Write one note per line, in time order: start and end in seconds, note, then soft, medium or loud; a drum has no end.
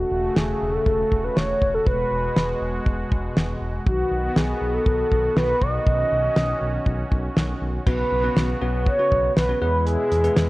0.00 1.85 C#3 medium
0.00 1.85 A3 medium
0.00 0.38 F#4 medium
0.00 3.83 F#4 medium
0.12 0.29 E1 loud
0.36 0.54 E1 loud
0.36 0.75 G#4 loud
0.36 snare loud
0.62 0.79 E1 loud
0.74 1.26 A4 loud
0.86 1.04 E1 loud
0.86 kick medium
1.12 1.29 E1 medium
1.12 kick medium
1.24 1.38 B4 loud
1.37 1.54 E1 loud
1.37 1.76 C#5 loud
1.37 snare loud
1.62 1.79 E1 loud
1.62 kick medium
1.74 1.86 A4 loud
1.87 2.04 E1 loud
1.87 3.85 B2 medium
1.87 3.85 G#3 medium
1.87 3.33 B4 loud
1.87 kick loud
2.11 2.29 E1 loud
2.36 2.54 E1 medium
2.36 snare loud
2.62 2.79 E1 medium
2.86 3.04 E1 loud
2.86 kick medium
3.12 3.29 E1 loud
3.12 kick medium
3.37 3.54 E1 loud
3.37 snare loud
3.62 3.79 E1 medium
3.87 4.04 B1 loud
3.87 7.83 D#3 medium
3.87 5.85 B3 medium
3.87 7.83 F#4 medium
3.87 4.38 F#4 loud
3.87 kick loud
4.12 4.29 B1 loud
4.36 4.54 B1 loud
4.36 4.75 G#4 medium
4.36 snare loud
4.62 4.79 B1 medium
4.74 5.36 A4 loud
4.86 5.04 B1 loud
4.86 kick medium
5.12 5.29 B1 medium
5.12 kick medium
5.36 5.54 B1 loud
5.36 5.63 B4 loud
5.36 snare loud
5.61 5.79 B1 medium
5.61 7.36 D#5 loud
5.61 kick medium
5.87 6.04 B1 loud
5.87 7.85 C#4 medium
5.87 kick loud
6.12 6.29 B1 medium
6.36 6.54 B1 loud
6.36 snare loud
6.62 6.79 B1 loud
6.86 7.04 B1 loud
6.86 kick medium
7.12 7.29 B1 loud
7.12 kick medium
7.36 7.54 B1 loud
7.36 snare loud
7.62 7.79 B1 medium
7.86 8.04 B1 loud
7.86 9.60 C#3 medium
7.86 8.11 B3 medium
7.86 9.60 B3 medium
7.86 8.11 C#4 medium
7.86 8.11 F#4 medium
7.86 9.60 F#4 medium
7.86 8.11 B4 medium
7.86 8.57 B4 loud
7.86 kick loud
7.86 crash medium
8.12 8.29 B1 loud
8.24 8.49 B3 medium
8.24 8.49 C#4 medium
8.24 8.49 F#4 medium
8.24 8.49 B4 medium
8.36 8.54 B1 loud
8.36 snare loud
8.61 8.88 B1 loud
8.61 8.86 B3 medium
8.61 8.86 C#4 medium
8.61 8.86 F#4 medium
8.61 8.86 B4 loud
8.86 9.33 C#5 loud
8.86 kick medium
8.99 9.32 B3 medium
8.99 9.32 C#4 medium
8.99 9.32 F#4 medium
8.99 9.32 B4 medium
9.12 9.29 B1 loud
9.12 kick medium
9.36 9.54 B1 loud
9.36 9.60 B4 loud
9.36 snare loud
9.49 9.60 B3 medium
9.49 9.62 C#4 medium
9.49 9.62 F#4 medium
9.49 9.60 B4 medium
9.61 9.97 E2 medium
9.61 10.49 B2 medium
9.61 10.49 G#3 medium
9.61 10.12 B3 medium
9.61 10.12 E4 medium
9.61 10.49 E4 medium
9.61 10.12 G#4 medium
9.61 9.85 B4 loud
9.61 10.12 B4 medium
9.86 10.49 G#4 medium
9.86 closed hi-hat medium
10.12 10.29 E2 medium
10.12 closed hi-hat medium
10.24 10.49 B3 medium
10.24 10.49 E4 medium
10.24 10.49 G#4 medium
10.24 10.49 B4 medium
10.24 closed hi-hat medium
10.36 10.49 E2 medium
10.36 snare loud
10.36 closed hi-hat medium